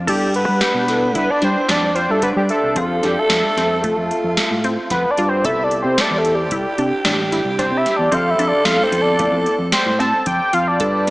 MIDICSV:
0, 0, Header, 1, 7, 480
1, 0, Start_track
1, 0, Tempo, 536193
1, 71, Time_signature, 5, 2, 24, 8
1, 9938, End_track
2, 0, Start_track
2, 0, Title_t, "Analog synth lead"
2, 0, Program_c, 0, 81
2, 79, Note_on_c, 0, 67, 91
2, 79, Note_on_c, 0, 74, 91
2, 298, Note_off_c, 0, 67, 0
2, 298, Note_off_c, 0, 74, 0
2, 320, Note_on_c, 0, 71, 88
2, 320, Note_on_c, 0, 78, 88
2, 999, Note_off_c, 0, 71, 0
2, 999, Note_off_c, 0, 78, 0
2, 1052, Note_on_c, 0, 71, 104
2, 1052, Note_on_c, 0, 78, 104
2, 1166, Note_on_c, 0, 74, 96
2, 1166, Note_on_c, 0, 81, 96
2, 1179, Note_off_c, 0, 71, 0
2, 1179, Note_off_c, 0, 78, 0
2, 1278, Note_off_c, 0, 74, 0
2, 1278, Note_off_c, 0, 81, 0
2, 1292, Note_on_c, 0, 72, 92
2, 1292, Note_on_c, 0, 79, 92
2, 1528, Note_on_c, 0, 74, 98
2, 1528, Note_on_c, 0, 81, 98
2, 1542, Note_off_c, 0, 72, 0
2, 1542, Note_off_c, 0, 79, 0
2, 1741, Note_off_c, 0, 74, 0
2, 1741, Note_off_c, 0, 81, 0
2, 1746, Note_on_c, 0, 72, 83
2, 1746, Note_on_c, 0, 79, 83
2, 1885, Note_on_c, 0, 69, 90
2, 1885, Note_on_c, 0, 76, 90
2, 1899, Note_off_c, 0, 72, 0
2, 1899, Note_off_c, 0, 79, 0
2, 1993, Note_off_c, 0, 69, 0
2, 1993, Note_off_c, 0, 76, 0
2, 1998, Note_on_c, 0, 71, 96
2, 1998, Note_on_c, 0, 78, 96
2, 2050, Note_off_c, 0, 71, 0
2, 2050, Note_off_c, 0, 78, 0
2, 2120, Note_on_c, 0, 67, 87
2, 2120, Note_on_c, 0, 74, 87
2, 2172, Note_off_c, 0, 67, 0
2, 2172, Note_off_c, 0, 74, 0
2, 2240, Note_on_c, 0, 69, 85
2, 2240, Note_on_c, 0, 76, 85
2, 2485, Note_on_c, 0, 65, 90
2, 2485, Note_on_c, 0, 72, 90
2, 2499, Note_off_c, 0, 69, 0
2, 2499, Note_off_c, 0, 76, 0
2, 2717, Note_off_c, 0, 65, 0
2, 2717, Note_off_c, 0, 72, 0
2, 2731, Note_on_c, 0, 67, 75
2, 2731, Note_on_c, 0, 74, 75
2, 2855, Note_on_c, 0, 69, 90
2, 2855, Note_on_c, 0, 76, 90
2, 2868, Note_off_c, 0, 67, 0
2, 2868, Note_off_c, 0, 74, 0
2, 4042, Note_off_c, 0, 69, 0
2, 4042, Note_off_c, 0, 76, 0
2, 4396, Note_on_c, 0, 71, 83
2, 4396, Note_on_c, 0, 78, 83
2, 4570, Note_on_c, 0, 74, 93
2, 4570, Note_on_c, 0, 81, 93
2, 4584, Note_off_c, 0, 71, 0
2, 4584, Note_off_c, 0, 78, 0
2, 4732, Note_on_c, 0, 72, 96
2, 4732, Note_on_c, 0, 79, 96
2, 4746, Note_off_c, 0, 74, 0
2, 4746, Note_off_c, 0, 81, 0
2, 4876, Note_on_c, 0, 76, 96
2, 4876, Note_on_c, 0, 83, 96
2, 4890, Note_off_c, 0, 72, 0
2, 4890, Note_off_c, 0, 79, 0
2, 5045, Note_on_c, 0, 74, 89
2, 5045, Note_on_c, 0, 81, 89
2, 5058, Note_off_c, 0, 76, 0
2, 5058, Note_off_c, 0, 83, 0
2, 5197, Note_off_c, 0, 74, 0
2, 5197, Note_off_c, 0, 81, 0
2, 5213, Note_on_c, 0, 72, 89
2, 5213, Note_on_c, 0, 79, 89
2, 5377, Note_on_c, 0, 74, 104
2, 5377, Note_on_c, 0, 81, 104
2, 5390, Note_off_c, 0, 72, 0
2, 5390, Note_off_c, 0, 79, 0
2, 5531, Note_on_c, 0, 69, 87
2, 5531, Note_on_c, 0, 76, 87
2, 5545, Note_off_c, 0, 74, 0
2, 5545, Note_off_c, 0, 81, 0
2, 5681, Note_on_c, 0, 67, 77
2, 5681, Note_on_c, 0, 74, 77
2, 5695, Note_off_c, 0, 69, 0
2, 5695, Note_off_c, 0, 76, 0
2, 6156, Note_off_c, 0, 67, 0
2, 6156, Note_off_c, 0, 74, 0
2, 6793, Note_on_c, 0, 72, 81
2, 6793, Note_on_c, 0, 79, 81
2, 6957, Note_on_c, 0, 76, 86
2, 6957, Note_on_c, 0, 83, 86
2, 6970, Note_off_c, 0, 72, 0
2, 6970, Note_off_c, 0, 79, 0
2, 7128, Note_on_c, 0, 74, 83
2, 7128, Note_on_c, 0, 81, 83
2, 7142, Note_off_c, 0, 76, 0
2, 7142, Note_off_c, 0, 83, 0
2, 7285, Note_on_c, 0, 77, 92
2, 7285, Note_on_c, 0, 84, 92
2, 7298, Note_off_c, 0, 74, 0
2, 7298, Note_off_c, 0, 81, 0
2, 7432, Note_on_c, 0, 76, 81
2, 7432, Note_on_c, 0, 83, 81
2, 7446, Note_off_c, 0, 77, 0
2, 7446, Note_off_c, 0, 84, 0
2, 7587, Note_on_c, 0, 74, 85
2, 7587, Note_on_c, 0, 81, 85
2, 7600, Note_off_c, 0, 76, 0
2, 7600, Note_off_c, 0, 83, 0
2, 7736, Note_off_c, 0, 74, 0
2, 7736, Note_off_c, 0, 81, 0
2, 7742, Note_on_c, 0, 77, 96
2, 7742, Note_on_c, 0, 84, 96
2, 7895, Note_off_c, 0, 77, 0
2, 7895, Note_off_c, 0, 84, 0
2, 7908, Note_on_c, 0, 72, 80
2, 7908, Note_on_c, 0, 79, 80
2, 8067, Note_on_c, 0, 74, 92
2, 8067, Note_on_c, 0, 81, 92
2, 8081, Note_off_c, 0, 72, 0
2, 8081, Note_off_c, 0, 79, 0
2, 8550, Note_off_c, 0, 74, 0
2, 8550, Note_off_c, 0, 81, 0
2, 8710, Note_on_c, 0, 72, 96
2, 8710, Note_on_c, 0, 79, 96
2, 8944, Note_on_c, 0, 81, 96
2, 8944, Note_on_c, 0, 88, 96
2, 8957, Note_off_c, 0, 72, 0
2, 8957, Note_off_c, 0, 79, 0
2, 9185, Note_off_c, 0, 81, 0
2, 9185, Note_off_c, 0, 88, 0
2, 9191, Note_on_c, 0, 79, 93
2, 9191, Note_on_c, 0, 86, 93
2, 9434, Note_on_c, 0, 77, 95
2, 9434, Note_on_c, 0, 84, 95
2, 9448, Note_off_c, 0, 79, 0
2, 9448, Note_off_c, 0, 86, 0
2, 9556, Note_on_c, 0, 74, 84
2, 9556, Note_on_c, 0, 81, 84
2, 9569, Note_off_c, 0, 77, 0
2, 9569, Note_off_c, 0, 84, 0
2, 9938, Note_off_c, 0, 74, 0
2, 9938, Note_off_c, 0, 81, 0
2, 9938, End_track
3, 0, Start_track
3, 0, Title_t, "Alto saxophone"
3, 0, Program_c, 1, 65
3, 70, Note_on_c, 1, 62, 83
3, 2434, Note_off_c, 1, 62, 0
3, 2477, Note_on_c, 1, 69, 105
3, 3429, Note_on_c, 1, 65, 89
3, 3442, Note_off_c, 1, 69, 0
3, 4630, Note_off_c, 1, 65, 0
3, 4871, Note_on_c, 1, 67, 96
3, 7235, Note_off_c, 1, 67, 0
3, 7270, Note_on_c, 1, 69, 113
3, 9395, Note_off_c, 1, 69, 0
3, 9663, Note_on_c, 1, 71, 102
3, 9938, Note_off_c, 1, 71, 0
3, 9938, End_track
4, 0, Start_track
4, 0, Title_t, "Tine electric piano"
4, 0, Program_c, 2, 4
4, 57, Note_on_c, 2, 59, 59
4, 68, Note_on_c, 2, 64, 51
4, 74, Note_on_c, 2, 69, 65
4, 231, Note_off_c, 2, 59, 0
4, 237, Note_off_c, 2, 64, 0
4, 240, Note_off_c, 2, 69, 0
4, 786, Note_on_c, 2, 59, 67
4, 793, Note_on_c, 2, 64, 53
4, 803, Note_on_c, 2, 69, 74
4, 956, Note_off_c, 2, 59, 0
4, 959, Note_off_c, 2, 64, 0
4, 965, Note_off_c, 2, 69, 0
4, 2463, Note_on_c, 2, 60, 63
4, 2474, Note_on_c, 2, 65, 57
4, 2480, Note_on_c, 2, 69, 65
4, 2802, Note_off_c, 2, 60, 0
4, 2808, Note_off_c, 2, 65, 0
4, 2811, Note_off_c, 2, 69, 0
4, 4876, Note_on_c, 2, 59, 57
4, 4880, Note_on_c, 2, 64, 50
4, 4894, Note_on_c, 2, 69, 64
4, 5545, Note_off_c, 2, 59, 0
4, 5547, Note_off_c, 2, 64, 0
4, 5554, Note_off_c, 2, 69, 0
4, 5579, Note_on_c, 2, 59, 53
4, 5588, Note_on_c, 2, 64, 54
4, 5602, Note_on_c, 2, 69, 67
4, 5752, Note_off_c, 2, 59, 0
4, 5757, Note_off_c, 2, 64, 0
4, 5764, Note_off_c, 2, 69, 0
4, 7748, Note_on_c, 2, 59, 55
4, 7754, Note_on_c, 2, 64, 49
4, 7767, Note_on_c, 2, 69, 60
4, 8215, Note_off_c, 2, 59, 0
4, 8226, Note_on_c, 2, 59, 64
4, 8229, Note_off_c, 2, 64, 0
4, 8230, Note_off_c, 2, 69, 0
4, 8240, Note_on_c, 2, 64, 60
4, 8241, Note_on_c, 2, 69, 68
4, 8565, Note_off_c, 2, 59, 0
4, 8572, Note_off_c, 2, 64, 0
4, 8572, Note_off_c, 2, 69, 0
4, 9909, Note_on_c, 2, 59, 63
4, 9938, Note_off_c, 2, 59, 0
4, 9938, End_track
5, 0, Start_track
5, 0, Title_t, "Synth arpeggio sound"
5, 0, Program_c, 3, 84
5, 66, Note_on_c, 3, 69, 83
5, 480, Note_off_c, 3, 69, 0
5, 544, Note_on_c, 3, 67, 85
5, 959, Note_off_c, 3, 67, 0
5, 1032, Note_on_c, 3, 64, 79
5, 1237, Note_off_c, 3, 64, 0
5, 1269, Note_on_c, 3, 62, 78
5, 1476, Note_off_c, 3, 62, 0
5, 1508, Note_on_c, 3, 62, 96
5, 1715, Note_off_c, 3, 62, 0
5, 1753, Note_on_c, 3, 65, 75
5, 1958, Note_off_c, 3, 65, 0
5, 1993, Note_on_c, 3, 62, 79
5, 2404, Note_off_c, 3, 62, 0
5, 2475, Note_on_c, 3, 60, 86
5, 2679, Note_off_c, 3, 60, 0
5, 2713, Note_on_c, 3, 62, 71
5, 3124, Note_off_c, 3, 62, 0
5, 3200, Note_on_c, 3, 60, 71
5, 3402, Note_off_c, 3, 60, 0
5, 3439, Note_on_c, 3, 57, 76
5, 3847, Note_off_c, 3, 57, 0
5, 4158, Note_on_c, 3, 60, 77
5, 4567, Note_off_c, 3, 60, 0
5, 4641, Note_on_c, 3, 65, 78
5, 4843, Note_off_c, 3, 65, 0
5, 4880, Note_on_c, 3, 69, 82
5, 5288, Note_off_c, 3, 69, 0
5, 5357, Note_on_c, 3, 67, 86
5, 5767, Note_off_c, 3, 67, 0
5, 5835, Note_on_c, 3, 64, 80
5, 6039, Note_off_c, 3, 64, 0
5, 6075, Note_on_c, 3, 62, 76
5, 6279, Note_off_c, 3, 62, 0
5, 6313, Note_on_c, 3, 62, 93
5, 6518, Note_off_c, 3, 62, 0
5, 6556, Note_on_c, 3, 64, 73
5, 6760, Note_off_c, 3, 64, 0
5, 6793, Note_on_c, 3, 62, 83
5, 7205, Note_off_c, 3, 62, 0
5, 7266, Note_on_c, 3, 60, 83
5, 7475, Note_off_c, 3, 60, 0
5, 7512, Note_on_c, 3, 62, 71
5, 7924, Note_off_c, 3, 62, 0
5, 7992, Note_on_c, 3, 60, 72
5, 8198, Note_off_c, 3, 60, 0
5, 8233, Note_on_c, 3, 57, 82
5, 8645, Note_off_c, 3, 57, 0
5, 8950, Note_on_c, 3, 60, 75
5, 9363, Note_off_c, 3, 60, 0
5, 9429, Note_on_c, 3, 65, 77
5, 9636, Note_off_c, 3, 65, 0
5, 9671, Note_on_c, 3, 69, 91
5, 9938, Note_off_c, 3, 69, 0
5, 9938, End_track
6, 0, Start_track
6, 0, Title_t, "Fingered electric bass"
6, 0, Program_c, 4, 33
6, 73, Note_on_c, 4, 43, 93
6, 410, Note_off_c, 4, 43, 0
6, 432, Note_on_c, 4, 55, 82
6, 544, Note_off_c, 4, 55, 0
6, 664, Note_on_c, 4, 47, 79
6, 1029, Note_off_c, 4, 47, 0
6, 1029, Note_on_c, 4, 43, 81
6, 1142, Note_off_c, 4, 43, 0
6, 1273, Note_on_c, 4, 55, 79
6, 1384, Note_off_c, 4, 55, 0
6, 1511, Note_on_c, 4, 41, 82
6, 1849, Note_off_c, 4, 41, 0
6, 1875, Note_on_c, 4, 43, 79
6, 2098, Note_off_c, 4, 43, 0
6, 2115, Note_on_c, 4, 55, 82
6, 2225, Note_off_c, 4, 55, 0
6, 2355, Note_on_c, 4, 36, 75
6, 2465, Note_off_c, 4, 36, 0
6, 2471, Note_on_c, 4, 41, 101
6, 2696, Note_off_c, 4, 41, 0
6, 2722, Note_on_c, 4, 41, 86
6, 2829, Note_off_c, 4, 41, 0
6, 2954, Note_on_c, 4, 41, 87
6, 3064, Note_off_c, 4, 41, 0
6, 3193, Note_on_c, 4, 41, 82
6, 3530, Note_off_c, 4, 41, 0
6, 3557, Note_on_c, 4, 41, 76
6, 3666, Note_off_c, 4, 41, 0
6, 3796, Note_on_c, 4, 41, 81
6, 3906, Note_off_c, 4, 41, 0
6, 4035, Note_on_c, 4, 45, 85
6, 4258, Note_off_c, 4, 45, 0
6, 4395, Note_on_c, 4, 41, 79
6, 4505, Note_off_c, 4, 41, 0
6, 4636, Note_on_c, 4, 43, 76
6, 4858, Note_off_c, 4, 43, 0
6, 4873, Note_on_c, 4, 36, 93
6, 5209, Note_off_c, 4, 36, 0
6, 5230, Note_on_c, 4, 48, 87
6, 5343, Note_off_c, 4, 48, 0
6, 5467, Note_on_c, 4, 40, 80
6, 5830, Note_off_c, 4, 40, 0
6, 5830, Note_on_c, 4, 36, 79
6, 5943, Note_off_c, 4, 36, 0
6, 6071, Note_on_c, 4, 48, 81
6, 6183, Note_off_c, 4, 48, 0
6, 6314, Note_on_c, 4, 33, 81
6, 6650, Note_off_c, 4, 33, 0
6, 6665, Note_on_c, 4, 36, 81
6, 6893, Note_off_c, 4, 36, 0
6, 6905, Note_on_c, 4, 48, 83
6, 7021, Note_off_c, 4, 48, 0
6, 7151, Note_on_c, 4, 40, 84
6, 7264, Note_off_c, 4, 40, 0
6, 7275, Note_on_c, 4, 41, 110
6, 7498, Note_off_c, 4, 41, 0
6, 7502, Note_on_c, 4, 41, 84
6, 7619, Note_off_c, 4, 41, 0
6, 7742, Note_on_c, 4, 41, 88
6, 7859, Note_off_c, 4, 41, 0
6, 7983, Note_on_c, 4, 41, 83
6, 8325, Note_off_c, 4, 41, 0
6, 8340, Note_on_c, 4, 41, 79
6, 8458, Note_off_c, 4, 41, 0
6, 8582, Note_on_c, 4, 41, 92
6, 8699, Note_off_c, 4, 41, 0
6, 8827, Note_on_c, 4, 45, 87
6, 9055, Note_off_c, 4, 45, 0
6, 9189, Note_on_c, 4, 41, 82
6, 9303, Note_off_c, 4, 41, 0
6, 9430, Note_on_c, 4, 41, 78
6, 9656, Note_off_c, 4, 41, 0
6, 9670, Note_on_c, 4, 43, 90
6, 9938, Note_off_c, 4, 43, 0
6, 9938, End_track
7, 0, Start_track
7, 0, Title_t, "Drums"
7, 70, Note_on_c, 9, 36, 87
7, 72, Note_on_c, 9, 42, 69
7, 72, Note_on_c, 9, 49, 78
7, 160, Note_off_c, 9, 36, 0
7, 161, Note_off_c, 9, 42, 0
7, 161, Note_off_c, 9, 49, 0
7, 307, Note_on_c, 9, 42, 56
7, 397, Note_off_c, 9, 42, 0
7, 546, Note_on_c, 9, 38, 98
7, 546, Note_on_c, 9, 42, 72
7, 635, Note_off_c, 9, 38, 0
7, 635, Note_off_c, 9, 42, 0
7, 791, Note_on_c, 9, 38, 32
7, 791, Note_on_c, 9, 42, 55
7, 880, Note_off_c, 9, 38, 0
7, 880, Note_off_c, 9, 42, 0
7, 1030, Note_on_c, 9, 36, 100
7, 1031, Note_on_c, 9, 42, 77
7, 1120, Note_off_c, 9, 36, 0
7, 1120, Note_off_c, 9, 42, 0
7, 1269, Note_on_c, 9, 38, 28
7, 1269, Note_on_c, 9, 42, 51
7, 1359, Note_off_c, 9, 38, 0
7, 1359, Note_off_c, 9, 42, 0
7, 1512, Note_on_c, 9, 38, 100
7, 1512, Note_on_c, 9, 42, 84
7, 1602, Note_off_c, 9, 38, 0
7, 1602, Note_off_c, 9, 42, 0
7, 1751, Note_on_c, 9, 42, 52
7, 1841, Note_off_c, 9, 42, 0
7, 1988, Note_on_c, 9, 42, 76
7, 1990, Note_on_c, 9, 36, 85
7, 2077, Note_off_c, 9, 42, 0
7, 2080, Note_off_c, 9, 36, 0
7, 2230, Note_on_c, 9, 42, 59
7, 2320, Note_off_c, 9, 42, 0
7, 2469, Note_on_c, 9, 42, 76
7, 2472, Note_on_c, 9, 36, 96
7, 2559, Note_off_c, 9, 42, 0
7, 2561, Note_off_c, 9, 36, 0
7, 2714, Note_on_c, 9, 38, 31
7, 2714, Note_on_c, 9, 42, 58
7, 2803, Note_off_c, 9, 38, 0
7, 2803, Note_off_c, 9, 42, 0
7, 2952, Note_on_c, 9, 38, 99
7, 2952, Note_on_c, 9, 42, 70
7, 3042, Note_off_c, 9, 38, 0
7, 3042, Note_off_c, 9, 42, 0
7, 3201, Note_on_c, 9, 38, 32
7, 3201, Note_on_c, 9, 42, 56
7, 3290, Note_off_c, 9, 38, 0
7, 3290, Note_off_c, 9, 42, 0
7, 3434, Note_on_c, 9, 36, 98
7, 3436, Note_on_c, 9, 42, 74
7, 3523, Note_off_c, 9, 36, 0
7, 3526, Note_off_c, 9, 42, 0
7, 3679, Note_on_c, 9, 42, 48
7, 3769, Note_off_c, 9, 42, 0
7, 3914, Note_on_c, 9, 38, 95
7, 3914, Note_on_c, 9, 42, 78
7, 4004, Note_off_c, 9, 38, 0
7, 4004, Note_off_c, 9, 42, 0
7, 4154, Note_on_c, 9, 42, 50
7, 4244, Note_off_c, 9, 42, 0
7, 4390, Note_on_c, 9, 38, 31
7, 4390, Note_on_c, 9, 42, 71
7, 4392, Note_on_c, 9, 36, 96
7, 4479, Note_off_c, 9, 38, 0
7, 4479, Note_off_c, 9, 42, 0
7, 4481, Note_off_c, 9, 36, 0
7, 4632, Note_on_c, 9, 42, 56
7, 4722, Note_off_c, 9, 42, 0
7, 4873, Note_on_c, 9, 36, 101
7, 4875, Note_on_c, 9, 42, 76
7, 4963, Note_off_c, 9, 36, 0
7, 4965, Note_off_c, 9, 42, 0
7, 5113, Note_on_c, 9, 42, 55
7, 5203, Note_off_c, 9, 42, 0
7, 5353, Note_on_c, 9, 38, 104
7, 5353, Note_on_c, 9, 42, 78
7, 5442, Note_off_c, 9, 38, 0
7, 5442, Note_off_c, 9, 42, 0
7, 5593, Note_on_c, 9, 42, 53
7, 5682, Note_off_c, 9, 42, 0
7, 5828, Note_on_c, 9, 42, 78
7, 5830, Note_on_c, 9, 36, 95
7, 5917, Note_off_c, 9, 42, 0
7, 5920, Note_off_c, 9, 36, 0
7, 6071, Note_on_c, 9, 42, 57
7, 6161, Note_off_c, 9, 42, 0
7, 6309, Note_on_c, 9, 38, 112
7, 6309, Note_on_c, 9, 42, 80
7, 6399, Note_off_c, 9, 38, 0
7, 6399, Note_off_c, 9, 42, 0
7, 6556, Note_on_c, 9, 38, 31
7, 6556, Note_on_c, 9, 42, 53
7, 6645, Note_off_c, 9, 38, 0
7, 6645, Note_off_c, 9, 42, 0
7, 6792, Note_on_c, 9, 36, 90
7, 6795, Note_on_c, 9, 38, 32
7, 6795, Note_on_c, 9, 42, 77
7, 6882, Note_off_c, 9, 36, 0
7, 6885, Note_off_c, 9, 38, 0
7, 6885, Note_off_c, 9, 42, 0
7, 7036, Note_on_c, 9, 38, 36
7, 7036, Note_on_c, 9, 42, 63
7, 7126, Note_off_c, 9, 38, 0
7, 7126, Note_off_c, 9, 42, 0
7, 7270, Note_on_c, 9, 36, 90
7, 7270, Note_on_c, 9, 42, 77
7, 7359, Note_off_c, 9, 42, 0
7, 7360, Note_off_c, 9, 36, 0
7, 7511, Note_on_c, 9, 42, 58
7, 7600, Note_off_c, 9, 42, 0
7, 7746, Note_on_c, 9, 38, 99
7, 7746, Note_on_c, 9, 42, 72
7, 7835, Note_off_c, 9, 38, 0
7, 7835, Note_off_c, 9, 42, 0
7, 7989, Note_on_c, 9, 42, 56
7, 8078, Note_off_c, 9, 42, 0
7, 8227, Note_on_c, 9, 42, 73
7, 8229, Note_on_c, 9, 36, 97
7, 8317, Note_off_c, 9, 42, 0
7, 8319, Note_off_c, 9, 36, 0
7, 8471, Note_on_c, 9, 42, 52
7, 8561, Note_off_c, 9, 42, 0
7, 8704, Note_on_c, 9, 38, 110
7, 8704, Note_on_c, 9, 42, 80
7, 8794, Note_off_c, 9, 38, 0
7, 8794, Note_off_c, 9, 42, 0
7, 8954, Note_on_c, 9, 38, 29
7, 8954, Note_on_c, 9, 42, 52
7, 9043, Note_off_c, 9, 38, 0
7, 9043, Note_off_c, 9, 42, 0
7, 9186, Note_on_c, 9, 42, 77
7, 9188, Note_on_c, 9, 36, 99
7, 9275, Note_off_c, 9, 42, 0
7, 9278, Note_off_c, 9, 36, 0
7, 9427, Note_on_c, 9, 42, 61
7, 9517, Note_off_c, 9, 42, 0
7, 9667, Note_on_c, 9, 42, 73
7, 9670, Note_on_c, 9, 36, 100
7, 9756, Note_off_c, 9, 42, 0
7, 9759, Note_off_c, 9, 36, 0
7, 9938, End_track
0, 0, End_of_file